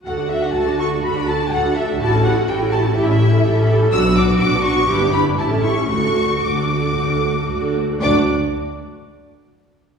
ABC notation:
X:1
M:4/4
L:1/16
Q:1/4=122
K:D
V:1 name="Violin section"
f2 e f a2 c'2 b2 a2 f2 e2 | a2 f2 g2 a2 e6 z2 | e'2 d'2 d'2 c'2 d'2 b2 a2 c'2 | c'4 d'8- d'2 z2 |
d'2 z12 z2 |]
V:2 name="Violin section"
f2 e f a2 c'2 b2 a2 f2 e2 | a2 f2 g2 a2 e6 z2 | e'2 d'2 d'2 c'2 d'2 b2 a2 c'2 | c'4 d'8- d'2 z2 |
d2 z12 z2 |]
V:3 name="Cello section"
F12 A4 | F8 E4 A4 | F8 G4 E4 | F12- F2 z2 |
D,,2 z12 z2 |]
V:4 name="Viola section"
[FA] [DF] [FA] [DF] [FA] [DF] [FA] [DF] [FA] [DF] [FA] [DF] [FA] [DF] [FA] [DF] | [EG] [CA] [EG] [CA] [EG] [CA] [EG] [CA] [EG] [CA] [EG] [CA] [EG] [CA] [EG] [CA] | [DF] [B,D] [DF] [B,D] [DF] [B,D] [DF] [B,D] [DE] [B,D] [DE] [B,D] [EG] [CA] [EG] [CA] | [A,F] [DA] [A,F] [DA] [A,F] [DA] [A,F] [DA] [A,F] [DA] [A,F] [DA] [A,F] [DA] [A,F] [DA] |
[DF]2 z12 z2 |]
V:5 name="Double bass section" clef=bass
D,,4 D,,4 D,,4 D,,4 | A,,,4 A,,,4 A,,,4 A,,,4 | B,,,4 B,,,4 G,,,4 A,,,4 | D,,4 D,,4 D,,4 D,,4 |
D,,2 z12 z2 |]